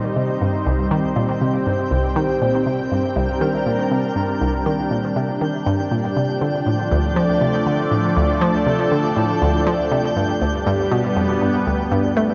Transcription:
0.00 0.15 A#2 medium
0.00 6.17 G3 medium
0.00 7.41 C4 medium
0.00 2.89 D#4 medium
0.00 2.76 C5 medium
0.00 12.34 G5 medium
0.16 0.35 C3 medium
0.23 6.17 G5 medium
0.41 0.65 G2 medium
0.66 0.90 C2 medium
0.91 1.10 D#3 medium
1.16 1.40 A#2 medium
1.41 1.60 C3 medium
1.67 1.90 G2 medium
1.91 2.15 C2 medium
2.16 2.35 D#3 loud
2.42 2.65 A#2 medium
2.61 6.16 A#4 medium
2.66 2.85 C3 medium
2.74 12.17 D4 medium
2.92 3.15 G2 medium
3.16 3.40 C2 loud
3.41 3.60 D#3 loud
3.66 3.90 A#2 medium
3.92 4.10 C3 medium
4.16 4.40 G2 medium
4.41 4.65 C2 loud
4.66 4.85 D#3 medium
4.91 5.15 A#2 medium
5.16 5.35 C3 medium
5.41 5.65 D#3 medium
5.66 5.78 G2 medium
5.91 6.15 A#2 medium
6.16 6.40 C3 medium
6.16 10.17 F3 medium
6.41 6.60 D3 medium
6.41 10.16 A3 medium
6.41 12.17 D5 medium
6.66 6.90 A2 medium
6.92 7.15 D2 loud
7.16 7.35 F3 loud
7.41 7.65 C3 medium
7.66 7.85 D3 medium
7.72 10.93 A4 medium
7.91 8.15 A2 medium
8.17 8.40 D2 loud
8.41 8.60 F3 loud
8.66 8.90 C3 medium
8.92 9.10 D3 medium
9.17 9.40 A2 medium
9.42 9.65 D2 loud
9.67 9.85 F3 loud
9.92 10.15 C3 medium
10.16 10.35 G2 medium
10.16 12.17 G3 medium
10.42 10.65 D2 medium
10.42 12.16 B3 medium
10.67 10.90 G2 loud
10.91 11.10 B2 loud
11.06 12.16 B4 medium
11.16 11.40 F2 medium
11.42 11.60 G2 medium
11.67 11.90 D2 medium
11.92 12.15 G2 loud
12.16 12.34 F3 medium
12.16 12.34 A3 loud

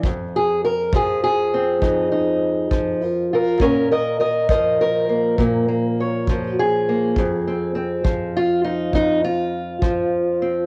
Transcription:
0.03 1.81 F2 medium
0.03 kick medium
0.36 0.64 G#4 medium
0.65 0.94 A#4 medium
0.93 2.70 F3 medium
0.93 1.22 G#4 medium
0.93 kick medium
1.24 3.04 G#4 medium
1.54 3.58 C4 soft
1.82 3.61 F2 medium
1.82 2.10 D#4 soft
1.82 kick medium
2.12 3.04 D#4 soft
2.71 3.61 F3 medium
2.71 kick medium
3.04 3.32 F4 medium
3.04 3.33 A#4 medium
3.33 3.62 F4 medium
3.33 3.61 A#4 medium
3.60 5.38 A#2 medium
3.60 3.91 C#4 medium
3.60 3.90 A#4 medium
3.60 kick medium
3.91 4.18 A#4 medium
3.91 4.19 D#5 medium
4.20 4.49 A#4 medium
4.20 4.49 D#5 medium
4.49 6.29 F3 medium
4.49 4.80 A#4 medium
4.49 5.39 D#5 medium
4.49 kick medium
4.81 6.58 A#4 medium
5.09 5.38 A#3 soft
5.38 7.13 A#2 medium
5.38 5.67 A#3 soft
5.38 kick medium
5.68 6.87 A#3 soft
6.00 7.14 C#5 soft
6.27 8.04 F3 medium
6.27 kick medium
6.59 8.36 G#4 medium
6.89 7.18 A#3 soft
7.16 8.94 F2 medium
7.16 kick medium
7.47 7.75 C4 soft
7.75 10.41 C4 soft
8.04 9.81 F3 medium
8.04 kick medium
8.37 8.64 F4 medium
8.64 8.94 D#4 medium
8.93 10.66 F2 medium
8.93 9.24 D#4 medium
8.93 kick medium
9.24 10.66 F4 loud
9.82 10.66 F3 medium
9.82 kick medium
10.42 10.66 C4 soft

